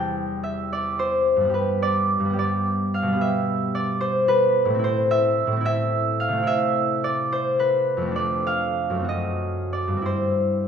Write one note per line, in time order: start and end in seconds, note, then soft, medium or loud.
0.00 1.47 E2 medium
0.00 1.39 G3 soft
0.00 1.51 C4 soft
0.00 0.58 E4 soft
0.00 1.48 G4 soft
0.00 0.42 E5 medium
0.00 3.79 G5 medium
0.43 1.56 E5 medium
0.73 1.18 D5 loud
0.99 1.56 C5 loud
1.36 2.19 G2 medium
1.40 2.24 G3 medium
1.45 2.28 B3 medium
1.49 2.32 G4 medium
1.54 4.27 B4 medium
1.82 2.38 D5 loud
2.20 3.14 G2 medium
2.25 3.06 G3 medium
2.29 3.11 B3 medium
2.29 3.16 G4 medium
2.39 3.74 D5 medium
2.94 3.40 F5 loud
3.02 4.76 B2 medium
3.07 4.79 G3 medium
3.12 4.81 B3 medium
3.17 4.84 G4 medium
3.21 4.12 E5 medium
3.75 4.86 D5 loud
4.01 4.47 C5 loud
4.28 4.85 B4 loud
4.65 5.46 A2 medium
4.70 5.51 A3 medium
4.74 5.55 C4 medium
4.79 5.59 E4 medium
4.84 7.31 C5 loud
5.11 5.64 E5 loud
5.47 6.40 A2 medium
5.52 6.31 A3 medium
5.56 6.36 C4 medium
5.60 6.41 E4 medium
5.66 6.46 E5 loud
6.20 6.67 F5 loud
6.28 8.10 C3 medium
6.33 8.00 A3 medium
6.37 8.05 C4 medium
6.43 8.17 E4 medium
6.47 8.19 E5 loud
7.04 7.51 D5 loud
7.32 10.04 C5 loud
7.59 8.19 B4 loud
7.97 9.02 F2 medium
8.02 8.93 A3 medium
8.06 8.98 C4 medium
8.11 9.09 D4 medium
8.16 9.11 D5 loud
8.47 9.11 F5 loud
8.90 10.00 F#2 medium
8.94 10.02 A3 soft
9.00 9.95 C4 medium
9.04 10.07 F#4 medium
9.09 10.09 D#5 medium
9.73 10.31 D5 medium
9.88 10.68 G2 medium
9.93 10.68 G3 soft
9.93 10.68 C4 soft
10.02 10.68 E4 medium
10.06 10.68 C5 medium